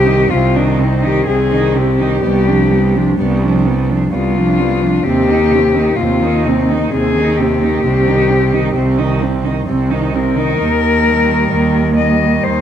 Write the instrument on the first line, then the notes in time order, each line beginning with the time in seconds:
cello
Already playing: C2 G4
0.06 D#3 D#4
0.30 C2 C3 C4 F4
0.55 D#3 D4 D#4
0.78 C3 C4 D#4
1.02 D#3 D#4 G4
1.26 C2 C3 C4 G#4
1.51 D#3 D#4
1.75 C3 C4 G4
1.99 D#3 D#4
2.23 C2 G3 B3
2.47 F3 D4
2.69 G3 B3
2.94 F3 D4
3.19 C2 G3 B3
3.42 F3 D4
3.65 G3 B3
3.89 F3 D4
4.12 C2 G3 B3 F4
4.35 F3 D4
4.57 G3 B3
4.80 F3 D4
5.03 D#2 C3 C4 G4
5.27 D#3 D#4
5.51 C3 C4
5.74 D#3 D#4
5.96 D#2 C3 C4 F4
6.21 D#3 D#4
6.44 C3 C4 D#4
6.70 D#3 D#4
6.92 D#2 C3 C4 G#4
7.15 D#3 D#4
7.37 C3 C4 G4
7.61 D#3 D#4
7.84 C2 C3 C4
8.06 D#3 D#4
8.29 C3 C4
8.52 D#3 D#4
8.74 C2 C3 C4
8.98 D#3 D#4
9.21 C3 C4
9.43 D#3 D#4
9.67 C2 C3 C4
9.89 D#3 D#4
10.12 C3 C4 A#4
10.35 D#3 D#4
10.60 D#2
11.05 D#3 G3
11.52 D#2
11.97 D#3 G3 D#5
12.44 D#2 C5